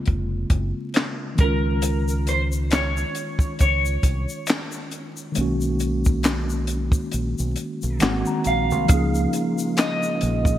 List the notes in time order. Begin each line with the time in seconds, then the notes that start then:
Already playing: C#3 G#3 A#3 C4 F4
0.06 F1, kick, closed hi-hat
0.50 F#1, kick, closed hi-hat
0.94 snare, clap, closed hi-hat
1.35 D#3 G#3, kick, closed hi-hat
1.40 C#2 C#4 A#4
1.44 F4
1.82 closed hi-hat, shaker
2.08 shaker
2.27 C5, closed hi-hat, shaker
2.52 shaker
2.71 C#5, finger snap, snare, clap, closed hi-hat, shaker
2.97 shaker
3.15 closed hi-hat, shaker
3.39 kick, shaker
3.59 C#2 C#5, kick, closed hi-hat, shaker
3.85 shaker
4.03 C2, kick, closed hi-hat, shaker
4.29 shaker
4.47 finger snap, snare, clap, closed hi-hat, shaker
4.72 shaker
4.91 closed hi-hat, shaker
5.17 shaker
5.32 D#3 G#3, closed hi-hat, shaker
5.37 B1 A#3 C#4
5.41 F#4
5.61 shaker
5.80 closed hi-hat, shaker
6.05 kick, shaker
6.23 finger snap, snare, clap, closed hi-hat, shaker
6.50 shaker
6.67 closed hi-hat, shaker
6.92 kick, shaker
7.12 A#1, closed hi-hat, shaker
7.39 B1, shaker
7.56 closed hi-hat, shaker
7.82 B1, shaker
7.99 G#1 D#3 G#3 A#3 C4 F#5, finger snap, snare, clap, closed hi-hat, shaker
8.04 F#4
8.26 A#5, shaker
8.44 A#1 F5 A#5, closed hi-hat, shaker
8.71 C2, shaker
8.85 C#3 F3 G#3 A#3 F4, closed hi-hat, shaker
8.89 C#2 C#4 D#4, kick
8.94 G#4
9.15 shaker
9.33 closed hi-hat, shaker
9.58 shaker
9.77 D#5, finger snap, snare, clap, closed hi-hat, shaker
10.03 shaker
10.21 A#1, closed hi-hat, shaker
10.45 kick, shaker